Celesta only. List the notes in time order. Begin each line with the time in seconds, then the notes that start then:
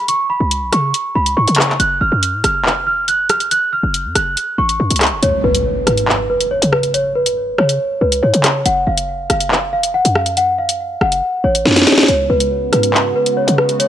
0.09 C#6
0.30 B5
0.73 C#6
1.15 B5
1.37 C#6
1.80 F#6
2.01 F6
2.44 F6
2.87 F6
3.08 F#6
3.30 F6
3.51 F#6
3.73 F6
4.16 F#6
4.58 C#6
5.23 C#5
5.44 B4
5.87 B4
6.30 B4
6.51 C#5
6.72 B4
6.94 C#5
7.15 B4
7.58 C#5
8.01 B4
8.23 C#5
8.66 F#5
8.87 F5
9.30 F5
9.73 F5
9.94 F#5
10.16 F5
10.37 F#5
10.58 F5
11.01 F#5
11.44 C#5
12.08 C#5
12.30 B4
12.73 B4
13.16 B4
13.37 C#5
13.58 B4
13.80 C#5